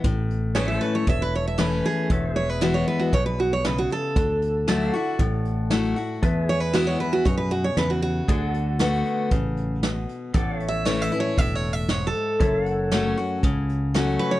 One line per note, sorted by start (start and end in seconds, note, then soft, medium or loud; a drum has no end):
0.04 0.78 A1 medium
0.04 1.02 A2 medium
0.04 kick loud
0.04 closed hi-hat medium
0.30 closed hi-hat medium
0.55 1.05 E3 medium
0.55 1.05 A3 medium
0.55 1.05 C#4 medium
0.55 1.06 E4 medium
0.55 0.76 G#4 medium
0.55 0.81 B4 medium
0.55 0.68 C#5 medium
0.55 2.10 E5 medium
0.55 snare loud
0.55 closed hi-hat medium
0.68 0.81 E5 medium
0.76 2.09 A4 medium
0.81 0.94 B4 medium
0.81 2.09 C#5 medium
0.81 closed hi-hat medium
0.95 1.07 C#5 medium
1.07 1.81 E1 medium
1.07 2.05 E2 medium
1.07 1.21 E5 medium
1.07 kick loud
1.07 closed hi-hat medium
1.22 1.34 B4 medium
1.33 1.47 C#5 medium
1.33 closed hi-hat medium
1.48 1.59 E5 medium
1.58 2.07 E3 medium
1.58 2.08 A3 medium
1.58 2.08 C#4 medium
1.58 2.08 E4 medium
1.58 1.85 B4 medium
1.58 snare loud
1.58 closed hi-hat medium
1.84 2.10 G#4 medium
1.84 closed hi-hat medium
2.10 2.83 E1 medium
2.10 3.08 E2 medium
2.10 2.31 A4 medium
2.10 2.37 C#5 medium
2.10 4.16 E5 medium
2.10 kick loud
2.10 closed hi-hat medium
2.31 4.15 G#4 medium
2.36 4.16 B4 medium
2.36 2.50 C#5 loud
2.36 closed hi-hat medium
2.50 2.62 B4 medium
2.61 3.11 E3 medium
2.61 3.11 G#3 medium
2.61 3.11 B3 medium
2.61 3.11 E4 medium
2.61 2.75 F#4 medium
2.61 snare loud
2.61 closed hi-hat medium
2.74 2.87 C#5 medium
2.87 3.00 B4 medium
2.87 closed hi-hat medium
3.00 3.13 F#4 medium
3.12 3.86 B1 medium
3.12 3.62 B2 medium
3.12 3.25 C#5 medium
3.12 kick loud
3.12 closed hi-hat medium
3.26 3.39 B4 medium
3.39 3.52 F#4 medium
3.39 closed hi-hat medium
3.53 3.65 C#5 medium
3.65 4.14 C#3 medium
3.65 3.78 B4 medium
3.65 snare loud
3.65 closed hi-hat medium
3.78 3.91 F#4 medium
3.90 4.92 A4 medium
3.90 closed hi-hat medium
4.16 4.90 D2 medium
4.16 5.15 D3 medium
4.16 kick loud
4.16 closed hi-hat medium
4.42 closed hi-hat medium
4.67 4.93 F#3 medium
4.67 4.93 A3 medium
4.67 4.93 E4 medium
4.67 4.92 F#4 loud
4.67 6.22 A4 medium
4.67 6.22 D5 medium
4.67 4.96 E5 medium
4.67 snare loud
4.67 closed hi-hat medium
4.93 5.19 E4 soft
4.93 5.19 F#4 medium
4.93 6.22 F#5 medium
4.93 closed hi-hat medium
5.19 5.93 A1 medium
5.19 6.18 A2 medium
5.19 kick loud
5.19 closed hi-hat medium
5.45 closed hi-hat medium
5.70 5.96 F#3 medium
5.70 5.96 A3 medium
5.70 5.96 E4 medium
5.70 5.95 F#4 medium
5.70 snare loud
5.70 closed hi-hat medium
5.96 6.22 E4 soft
5.96 6.21 F#4 medium
5.96 closed hi-hat medium
6.23 6.96 E2 medium
6.23 7.21 E2 medium
6.23 6.43 A4 medium
6.23 8.27 B4 medium
6.23 8.28 E5 medium
6.23 kick loud
6.23 closed hi-hat medium
6.43 8.27 G#4 medium
6.49 6.60 C#5 medium
6.49 closed hi-hat medium
6.60 6.73 B4 medium
6.74 6.99 E3 medium
6.74 6.99 G#3 medium
6.74 6.99 B3 medium
6.74 6.99 E4 loud
6.74 6.86 F#4 medium
6.74 snare loud
6.74 closed hi-hat medium
6.87 7.00 C#5 medium
7.00 7.26 B3 soft
7.00 7.25 E4 medium
7.00 7.13 B4 medium
7.00 closed hi-hat medium
7.13 7.25 F#4 medium
7.25 7.70 F#2 medium
7.25 7.75 B2 medium
7.25 7.37 C#5 medium
7.25 kick loud
7.25 closed hi-hat medium
7.38 7.51 B4 medium
7.51 7.64 F#4 medium
7.51 closed hi-hat medium
7.64 7.77 C#5 medium
7.77 8.21 E2 medium
7.77 8.27 C#3 medium
7.77 7.90 B4 medium
7.77 snare loud
7.77 closed hi-hat medium
7.90 8.01 F#4 medium
8.02 9.03 F#4 medium
8.02 closed hi-hat medium
8.28 9.02 D2 medium
8.28 8.78 D3 medium
8.28 8.49 G#4 medium
8.28 10.33 D5 medium
8.28 10.33 F#5 medium
8.28 kick loud
8.28 closed hi-hat medium
8.49 10.33 A4 medium
8.54 closed hi-hat medium
8.79 9.29 D3 medium
8.79 9.29 A3 medium
8.79 9.29 B3 loud
8.79 9.30 F#4 medium
8.79 snare loud
8.79 closed hi-hat medium
9.06 closed hi-hat medium
9.31 10.05 A1 medium
9.31 9.80 C#3 medium
9.31 kick loud
9.31 closed hi-hat medium
9.57 closed hi-hat medium
9.83 10.32 B2 medium
9.83 snare loud
9.83 closed hi-hat medium
10.09 closed hi-hat medium
10.34 11.08 A1 medium
10.34 11.32 A2 medium
10.34 12.38 A4 medium
10.34 10.55 D5 medium
10.34 10.61 F#5 medium
10.34 kick loud
10.34 closed hi-hat medium
10.55 12.39 C#5 medium
10.60 12.39 E5 medium
10.60 closed hi-hat medium
10.68 10.85 E5 loud
10.85 11.11 E3 medium
10.85 11.11 A3 loud
10.85 11.11 C#4 loud
10.85 11.11 E4 loud
10.85 11.02 C#5 medium
10.85 snare loud
10.85 closed hi-hat medium
11.02 11.19 E5 loud
11.12 11.38 C#4 medium
11.12 11.37 E4 medium
11.12 closed hi-hat medium
11.20 11.38 C#5 medium
11.37 12.11 E1 medium
11.37 11.87 A2 medium
11.37 11.55 E5 loud
11.37 kick loud
11.37 closed hi-hat medium
11.55 11.73 C#5 medium
11.63 closed hi-hat medium
11.73 11.90 E5 medium
11.89 12.38 G#2 medium
11.89 12.06 C#5 medium
11.89 snare loud
11.89 closed hi-hat medium
12.07 13.57 A4 medium
12.14 closed hi-hat medium
12.40 13.14 F#1 medium
12.40 13.38 F#2 medium
12.40 14.40 A4 medium
12.40 14.40 C#5 medium
12.40 12.67 E5 medium
12.40 kick loud
12.40 closed hi-hat medium
12.66 14.40 F#5 medium
12.66 closed hi-hat medium
12.91 13.16 F#3 medium
12.91 13.17 A3 loud
12.91 13.17 C#4 loud
12.91 13.16 F#4 medium
12.91 snare loud
12.91 closed hi-hat medium
13.18 13.43 C#4 soft
13.18 13.42 F#4 medium
13.18 closed hi-hat medium
13.43 14.16 C#2 medium
13.43 14.40 C#3 medium
13.43 kick loud
13.43 closed hi-hat medium
13.69 closed hi-hat medium
13.94 14.40 F#3 medium
13.94 14.40 A3 medium
13.94 14.40 C#4 medium
13.94 14.40 F#4 loud
13.94 snare loud
13.94 closed hi-hat medium
14.19 14.32 B4 medium
14.19 closed hi-hat medium
14.31 14.40 C#5 medium